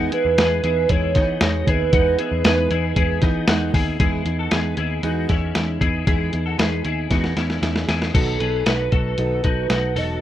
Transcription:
Already playing: steel-string acoustic guitar E3 G#3 B3 D#4 G#4, clean electric guitar D#4 F#4
0.12 steel-string acoustic guitar B3 D#4 G#4, clean electric guitar E4 G#4, soft synth lead B4, closed hi-hat
0.25 picked electric bass E2
0.38 picked electric bass E2, steel-string acoustic guitar E3 G#3 B3 D#4 G#4, clean electric guitar G#4 B4, snare, closed hi-hat
0.63 picked electric bass E2, steel-string acoustic guitar B3 D#4 G#4, clean electric guitar E4 G#4, closed hi-hat
0.89 picked electric bass E2, steel-string acoustic guitar G#3 B3 D#4 G#4, clean electric guitar E4 G#4, soft synth lead C#5, kick, closed hi-hat
1.15 picked electric bass E3, clean electric guitar B3 D#4, steel-string acoustic guitar B3 D#4 G#4, kick, snare, closed hi-hat
1.41 picked electric bass E2, steel-string acoustic guitar E3 G#3 B3 D#4 G#4, clean electric guitar D#4 F#4, snare, closed hi-hat
1.66 picked electric bass D#2, steel-string acoustic guitar B3 D#4 G#4, clean electric guitar E4 G#4, soft synth lead B4, kick, closed hi-hat
1.92 picked electric bass E2, steel-string acoustic guitar E3 G#3 B3 D#4 G#4, clean electric guitar D#4 F#4, kick, closed hi-hat
2.18 steel-string acoustic guitar B3 D#4 G#4, clean electric guitar E4 G#4, closed hi-hat
2.32 picked electric bass E2
2.44 picked electric bass E2, steel-string acoustic guitar E3 G#3 B3 D#4 G#4, clean electric guitar G#4 B4, snare, closed hi-hat
2.70 picked electric bass E2, steel-string acoustic guitar B3 D#4 G#4, clean electric guitar E4 G#4, closed hi-hat
2.95 picked electric bass E2, steel-string acoustic guitar G#3 B3 D#4 G#4, clean electric guitar E4 G#4, kick, closed hi-hat
3.21 picked electric bass E3, clean electric guitar B3 D#4, steel-string acoustic guitar B3 D#4 G#4, kick, snare, closed hi-hat
3.48 picked electric bass E2, steel-string acoustic guitar E3 G#3 B3 D#4 G#4, clean electric guitar D#4 F#4, snare, closed hi-hat
3.73 picked electric bass D#2, steel-string acoustic guitar B3 D#4 G#4, clean electric guitar E4 G#4, kick, open hi-hat
3.99 picked electric bass E2, steel-string acoustic guitar E3 G#3 B3 D#4 G#4, clean electric guitar E4 G#4, kick, closed hi-hat
4.25 picked electric bass E2, steel-string acoustic guitar B3 D#4 G#4, closed hi-hat
4.39 clean electric guitar F#4 A4
4.51 picked electric bass E2, steel-string acoustic guitar G#3 B3 D#4 G#4, clean electric guitar G#4 B4, snare, closed hi-hat
4.77 picked electric bass D#2, steel-string acoustic guitar B3 D#4 G#4, clean electric guitar E4 G#4, closed hi-hat
5.03 picked electric bass E2, steel-string acoustic guitar E3 G#3 B3 D#4 G#4, clean electric guitar D#4 F#4, closed hi-hat
5.29 picked electric bass E2, steel-string acoustic guitar B3 D#4 G#4, clean electric guitar C#4 E4, kick, snare, closed hi-hat
5.55 picked electric bass E2, steel-string acoustic guitar G#3 B3 D#4 G#4, snare, closed hi-hat
5.80 picked electric bass E2, steel-string acoustic guitar B3 D#4 G#4, clean electric guitar E4 G#4, kick, closed hi-hat
6.06 picked electric bass E2, steel-string acoustic guitar E3 G#3 B3 D#4 G#4, clean electric guitar E4 G#4, kick, closed hi-hat
6.32 picked electric bass E2, steel-string acoustic guitar B3 D#4 G#4, closed hi-hat
6.46 clean electric guitar F#4 A4
6.58 picked electric bass E2, steel-string acoustic guitar G#3 B3 D#4 G#4, clean electric guitar G#4 B4, snare, closed hi-hat
6.84 picked electric bass D#2, steel-string acoustic guitar B3 D#4 G#4, clean electric guitar E4 G#4, closed hi-hat
7.09 picked electric bass E2, steel-string acoustic guitar E3 G#3 B3 D#4 G#4, clean electric guitar D#4 F#4, kick, snare, closed hi-hat
7.24 snare
7.35 picked electric bass E2, steel-string acoustic guitar B3 D#4 G#4, clean electric guitar C#4 E4, snare, closed hi-hat
7.50 snare
7.61 picked electric bass E2, steel-string acoustic guitar G#3 B3 D#4 G#4, snare, closed hi-hat
7.76 snare
7.87 picked electric bass E2, steel-string acoustic guitar B3 D#4 G#4, clean electric guitar E4 G#4, snare, closed hi-hat
8.02 snare
8.14 picked electric bass B1, steel-string acoustic guitar B2 D#3 F#3 B3 D#4 A4, clean electric guitar F#4 A4, soft synth lead A4, kick, closed hi-hat, crash
8.40 picked electric bass B1, steel-string acoustic guitar F#3 B3 D#4 A4, clean electric guitar G#4 B4, closed hi-hat
8.65 picked electric bass B1, steel-string acoustic guitar F#3 B3 D#4 A4, clean electric guitar F#4 B4, soft synth lead B4, snare, closed hi-hat
8.91 picked electric bass B1, steel-string acoustic guitar F#3 B3 D#4 A4, clean electric guitar F#4 A4, kick, closed hi-hat
9.17 picked electric bass B1, steel-string acoustic guitar B2 D#3 F#3 B3 D#4 A4, soft synth lead B4, closed hi-hat
9.43 picked electric bass B1, steel-string acoustic guitar F#3 B3 D#4 A4, clean electric guitar D#4 F#4, kick, closed hi-hat
9.68 picked electric bass B1, steel-string acoustic guitar F#3 B3 D#4 A4, clean electric guitar D#4 F#4, snare, closed hi-hat
9.95 picked electric bass E1, steel-string acoustic guitar F#3 B3 D#4 A4, clean electric guitar F#4 A4, soft synth lead D#5, open hi-hat

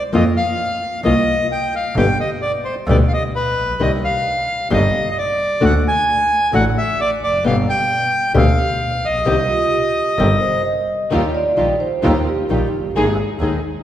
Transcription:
0.13 double bass F2, nylon-string guitar F3 A#3 C4 F4, bandoneon D#5
0.37 bandoneon F5
1.03 double bass C2, nylon-string guitar F3 A#3 C4 F4, bandoneon D#5
1.52 bandoneon G5
1.76 bandoneon F5
1.94 double bass G1, nylon-string guitar B2 D3 G3 B3 G4, bandoneon G5
2.20 bandoneon D#5
2.42 bandoneon D5
2.65 bandoneon C5
2.87 double bass D2, nylon-string guitar B2 D3 G3 B3 G4, bandoneon D5
3.08 bandoneon F5
3.14 bandoneon D#5
3.36 bandoneon B4
3.57 double bass A#1
3.79 double bass C2, nylon-string guitar C3 D#3 G3 D4 G4, bandoneon D#5
4.05 bandoneon F5
4.70 double bass G1, nylon-string guitar C3 D#3 G3 D4 G4, bandoneon D#5
5.11 bandoneon D#5
5.18 bandoneon D5
5.60 double bass D2, nylon-string guitar D3 A3 D4 F#4
5.64 bandoneon F#5
5.88 bandoneon G#5
6.52 double bass A1, nylon-string guitar D3 A3 D4 F#4, bandoneon F#5
6.78 bandoneon E5
7.01 bandoneon D5
7.21 double bass F1, bandoneon D5
7.44 double bass G1, nylon-string guitar B2 D3 G3 B3 G4, bandoneon F5
7.69 bandoneon G5
8.34 double bass D2, nylon-string guitar B2 D3 G3 B3 G4, bandoneon F5
9.02 double bass A#1, bandoneon D#5
9.25 double bass C2, nylon-string guitar C3 D#3 G3 C4 G4
9.49 vibraphone F4
9.71 vibraphone G4
10.18 double bass G1, nylon-string guitar C3 D#3 G3 C4 G4, vibraphone A#4
10.40 vibraphone C5
10.65 vibraphone D#5
11.11 double bass D#2, nylon-string guitar D#3 G3 D#4 F4, string section D#4 F4 G4, vibraphone A#4
11.28 vibraphone C#5
11.34 vibraphone D5
11.57 double bass A#1, nylon-string guitar D#3 G3 D#4 F4, string section D#4 F4 G4
11.80 vibraphone C5
12.02 double bass D#2, nylon-string guitar D#3 G3 D#4 F4, string section D#4 F4 G4, vibraphone A#4
12.27 vibraphone G4
12.49 double bass A#1, nylon-string guitar D#3 G3 D#4 F4, string section D#4 F4 G4
12.73 double bass F#1
12.95 double bass G#1, nylon-string guitar D#3 G#3 D#4 G#4, string section A#3 D#4 G#4
13.40 double bass D#2, nylon-string guitar D#3 G#3 D#4 G#4, string section A#3 D#4 G#4

